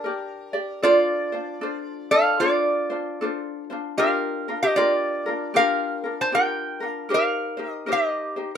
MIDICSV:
0, 0, Header, 1, 3, 480
1, 0, Start_track
1, 0, Key_signature, -2, "major"
1, 0, Tempo, 784109
1, 504, Time_signature, 4, 2, 24, 8
1, 5247, End_track
2, 0, Start_track
2, 0, Title_t, "Resonator guitar played with a steel bar"
2, 0, Program_c, 0, 25
2, 0, Note_on_c, 0, 62, 65
2, 0, Note_on_c, 0, 70, 90
2, 484, Note_off_c, 0, 62, 0
2, 508, Note_off_c, 0, 70, 0
2, 511, Note_on_c, 0, 74, 99
2, 518, Note_on_c, 0, 65, 82
2, 1268, Note_off_c, 0, 65, 0
2, 1292, Note_on_c, 0, 77, 105
2, 1295, Note_on_c, 0, 69, 80
2, 1312, Note_off_c, 0, 74, 0
2, 1457, Note_off_c, 0, 69, 0
2, 1468, Note_on_c, 0, 65, 75
2, 1472, Note_on_c, 0, 74, 99
2, 1473, Note_off_c, 0, 77, 0
2, 2224, Note_off_c, 0, 65, 0
2, 2224, Note_off_c, 0, 74, 0
2, 2436, Note_on_c, 0, 77, 100
2, 2445, Note_on_c, 0, 70, 77
2, 2801, Note_off_c, 0, 70, 0
2, 2829, Note_off_c, 0, 77, 0
2, 2832, Note_on_c, 0, 75, 89
2, 2837, Note_on_c, 0, 67, 64
2, 2910, Note_off_c, 0, 67, 0
2, 2914, Note_on_c, 0, 74, 94
2, 2915, Note_off_c, 0, 75, 0
2, 2922, Note_on_c, 0, 65, 72
2, 3369, Note_off_c, 0, 65, 0
2, 3403, Note_on_c, 0, 70, 85
2, 3404, Note_off_c, 0, 74, 0
2, 3407, Note_on_c, 0, 77, 111
2, 3760, Note_off_c, 0, 70, 0
2, 3797, Note_off_c, 0, 77, 0
2, 3802, Note_on_c, 0, 72, 74
2, 3803, Note_on_c, 0, 81, 93
2, 3873, Note_off_c, 0, 72, 0
2, 3880, Note_off_c, 0, 81, 0
2, 3886, Note_on_c, 0, 70, 75
2, 3886, Note_on_c, 0, 79, 105
2, 4211, Note_off_c, 0, 79, 0
2, 4211, Note_on_c, 0, 77, 105
2, 4331, Note_off_c, 0, 70, 0
2, 4331, Note_off_c, 0, 77, 0
2, 4372, Note_on_c, 0, 77, 99
2, 4375, Note_on_c, 0, 70, 83
2, 4721, Note_off_c, 0, 77, 0
2, 4721, Note_on_c, 0, 75, 99
2, 4815, Note_off_c, 0, 70, 0
2, 4847, Note_on_c, 0, 67, 69
2, 4852, Note_off_c, 0, 75, 0
2, 4852, Note_on_c, 0, 75, 95
2, 5202, Note_off_c, 0, 67, 0
2, 5204, Note_off_c, 0, 75, 0
2, 5247, End_track
3, 0, Start_track
3, 0, Title_t, "Ukulele"
3, 0, Program_c, 1, 24
3, 25, Note_on_c, 1, 70, 57
3, 35, Note_on_c, 1, 67, 57
3, 35, Note_on_c, 1, 74, 60
3, 318, Note_off_c, 1, 74, 0
3, 321, Note_off_c, 1, 67, 0
3, 325, Note_on_c, 1, 74, 62
3, 326, Note_off_c, 1, 70, 0
3, 329, Note_on_c, 1, 67, 53
3, 504, Note_off_c, 1, 74, 0
3, 505, Note_on_c, 1, 69, 73
3, 506, Note_off_c, 1, 67, 0
3, 511, Note_on_c, 1, 65, 84
3, 512, Note_on_c, 1, 62, 79
3, 513, Note_on_c, 1, 72, 94
3, 802, Note_off_c, 1, 72, 0
3, 806, Note_off_c, 1, 69, 0
3, 809, Note_off_c, 1, 62, 0
3, 809, Note_off_c, 1, 65, 0
3, 809, Note_on_c, 1, 72, 49
3, 817, Note_on_c, 1, 65, 46
3, 822, Note_on_c, 1, 62, 42
3, 980, Note_off_c, 1, 62, 0
3, 986, Note_off_c, 1, 72, 0
3, 987, Note_on_c, 1, 62, 60
3, 987, Note_on_c, 1, 69, 63
3, 990, Note_off_c, 1, 65, 0
3, 997, Note_on_c, 1, 65, 60
3, 998, Note_on_c, 1, 72, 70
3, 1287, Note_off_c, 1, 62, 0
3, 1287, Note_off_c, 1, 69, 0
3, 1292, Note_off_c, 1, 65, 0
3, 1293, Note_off_c, 1, 72, 0
3, 1299, Note_on_c, 1, 65, 48
3, 1300, Note_on_c, 1, 72, 49
3, 1311, Note_on_c, 1, 62, 39
3, 1470, Note_off_c, 1, 62, 0
3, 1471, Note_off_c, 1, 65, 0
3, 1472, Note_off_c, 1, 72, 0
3, 1474, Note_on_c, 1, 69, 75
3, 1477, Note_on_c, 1, 62, 76
3, 1482, Note_on_c, 1, 65, 84
3, 1487, Note_on_c, 1, 72, 86
3, 1767, Note_off_c, 1, 72, 0
3, 1770, Note_off_c, 1, 69, 0
3, 1772, Note_off_c, 1, 62, 0
3, 1774, Note_off_c, 1, 65, 0
3, 1774, Note_on_c, 1, 72, 54
3, 1783, Note_on_c, 1, 65, 47
3, 1786, Note_on_c, 1, 62, 40
3, 1949, Note_off_c, 1, 72, 0
3, 1953, Note_off_c, 1, 65, 0
3, 1955, Note_off_c, 1, 62, 0
3, 1965, Note_on_c, 1, 69, 61
3, 1970, Note_on_c, 1, 62, 66
3, 1973, Note_on_c, 1, 65, 64
3, 1981, Note_on_c, 1, 72, 62
3, 2256, Note_off_c, 1, 69, 0
3, 2257, Note_off_c, 1, 72, 0
3, 2258, Note_off_c, 1, 62, 0
3, 2260, Note_off_c, 1, 65, 0
3, 2264, Note_on_c, 1, 72, 55
3, 2270, Note_on_c, 1, 65, 56
3, 2279, Note_on_c, 1, 62, 55
3, 2432, Note_off_c, 1, 62, 0
3, 2433, Note_on_c, 1, 67, 81
3, 2434, Note_off_c, 1, 72, 0
3, 2437, Note_off_c, 1, 65, 0
3, 2440, Note_on_c, 1, 62, 87
3, 2440, Note_on_c, 1, 70, 87
3, 2443, Note_on_c, 1, 65, 81
3, 2730, Note_off_c, 1, 67, 0
3, 2733, Note_off_c, 1, 62, 0
3, 2734, Note_off_c, 1, 70, 0
3, 2735, Note_off_c, 1, 65, 0
3, 2744, Note_on_c, 1, 70, 55
3, 2748, Note_on_c, 1, 65, 51
3, 2753, Note_on_c, 1, 62, 43
3, 2914, Note_off_c, 1, 62, 0
3, 2914, Note_off_c, 1, 70, 0
3, 2915, Note_on_c, 1, 67, 62
3, 2916, Note_off_c, 1, 65, 0
3, 2921, Note_on_c, 1, 62, 65
3, 2924, Note_on_c, 1, 65, 63
3, 2926, Note_on_c, 1, 70, 69
3, 3211, Note_off_c, 1, 67, 0
3, 3211, Note_off_c, 1, 70, 0
3, 3214, Note_off_c, 1, 62, 0
3, 3215, Note_off_c, 1, 65, 0
3, 3219, Note_on_c, 1, 70, 56
3, 3228, Note_on_c, 1, 65, 42
3, 3234, Note_on_c, 1, 62, 45
3, 3389, Note_off_c, 1, 62, 0
3, 3391, Note_off_c, 1, 70, 0
3, 3391, Note_on_c, 1, 67, 80
3, 3396, Note_off_c, 1, 65, 0
3, 3396, Note_on_c, 1, 62, 75
3, 3403, Note_on_c, 1, 70, 83
3, 3404, Note_on_c, 1, 65, 78
3, 3688, Note_off_c, 1, 70, 0
3, 3689, Note_off_c, 1, 67, 0
3, 3692, Note_off_c, 1, 62, 0
3, 3695, Note_on_c, 1, 70, 46
3, 3696, Note_off_c, 1, 65, 0
3, 3704, Note_on_c, 1, 65, 42
3, 3709, Note_on_c, 1, 62, 41
3, 3864, Note_off_c, 1, 62, 0
3, 3870, Note_off_c, 1, 70, 0
3, 3871, Note_off_c, 1, 65, 0
3, 3871, Note_on_c, 1, 62, 62
3, 3871, Note_on_c, 1, 67, 60
3, 3878, Note_on_c, 1, 65, 60
3, 3883, Note_on_c, 1, 70, 73
3, 4157, Note_off_c, 1, 70, 0
3, 4165, Note_on_c, 1, 70, 55
3, 4169, Note_off_c, 1, 62, 0
3, 4169, Note_off_c, 1, 67, 0
3, 4170, Note_off_c, 1, 65, 0
3, 4177, Note_on_c, 1, 65, 47
3, 4179, Note_on_c, 1, 62, 43
3, 4332, Note_off_c, 1, 70, 0
3, 4340, Note_on_c, 1, 70, 72
3, 4343, Note_off_c, 1, 62, 0
3, 4345, Note_off_c, 1, 65, 0
3, 4346, Note_on_c, 1, 63, 71
3, 4348, Note_on_c, 1, 67, 88
3, 4352, Note_on_c, 1, 72, 82
3, 4627, Note_off_c, 1, 72, 0
3, 4634, Note_on_c, 1, 72, 57
3, 4635, Note_off_c, 1, 67, 0
3, 4640, Note_off_c, 1, 63, 0
3, 4642, Note_on_c, 1, 67, 47
3, 4643, Note_off_c, 1, 70, 0
3, 4648, Note_on_c, 1, 63, 45
3, 4811, Note_off_c, 1, 63, 0
3, 4813, Note_on_c, 1, 70, 66
3, 4818, Note_on_c, 1, 63, 66
3, 4819, Note_off_c, 1, 67, 0
3, 4819, Note_off_c, 1, 72, 0
3, 4826, Note_on_c, 1, 67, 69
3, 4827, Note_on_c, 1, 72, 66
3, 5111, Note_off_c, 1, 72, 0
3, 5115, Note_off_c, 1, 67, 0
3, 5119, Note_on_c, 1, 72, 49
3, 5120, Note_off_c, 1, 70, 0
3, 5121, Note_off_c, 1, 63, 0
3, 5123, Note_on_c, 1, 67, 45
3, 5128, Note_on_c, 1, 63, 43
3, 5247, Note_off_c, 1, 63, 0
3, 5247, Note_off_c, 1, 67, 0
3, 5247, Note_off_c, 1, 72, 0
3, 5247, End_track
0, 0, End_of_file